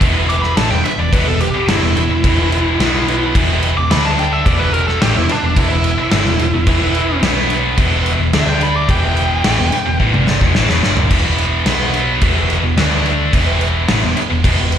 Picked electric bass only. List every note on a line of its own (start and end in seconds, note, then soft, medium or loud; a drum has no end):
0.01 0.53 E1 medium
0.57 0.70 A1 medium
0.71 0.84 E1 medium
0.85 muted picked electric bass stroke soft
0.98 1.11 E1 medium
1.12 1.26 E1 medium
1.26 1.52 E1 medium
1.53 muted picked electric bass stroke soft
1.67 1.81 G1 medium
1.81 1.95 E1 medium
1.96 2.09 E1 medium
2.10 2.23 E1 medium
2.24 2.75 E1 loud
2.79 3.31 B1 medium
3.35 3.74 E1 loud
3.77 3.90 E1 medium
3.90 4.42 D2 medium
4.46 4.98 E1 loud
5.02 5.15 A1 medium
5.16 5.29 E1 medium
5.29 muted picked electric bass stroke soft
5.43 5.56 E1 medium
5.56 5.69 E1 medium
5.71 5.97 E1 medium
5.98 muted picked electric bass stroke soft
6.12 6.25 G1 medium
6.26 6.39 E1 medium
6.40 6.53 E1 medium
6.54 6.66 E1 medium
6.67 7.19 E1 medium
7.22 7.74 B1 loud
7.77 8.17 E1 medium
8.19 8.32 E1 medium
8.34 8.85 D2 medium
8.89 9.41 E1 loud
9.45 9.58 A1 medium
9.59 9.72 E1 medium
9.87 9.99 E1 medium
10.00 10.13 A1 medium
10.13 10.39 G1 loud
10.41 10.54 E1 loud
10.56 10.68 A1 medium
10.69 10.82 E1 medium
10.83 11.09 G1 loud
11.11 11.63 E1 medium
11.66 12.18 B1 loud
12.21 12.60 E1 loud
12.64 12.76 E1 medium
12.77 13.29 D2 medium
13.33 13.85 E1 loud
13.89 14.02 A1 medium
14.03 14.15 E1 medium
14.31 14.44 E1 medium
14.44 14.57 E1 loud
14.59 14.79 E1 medium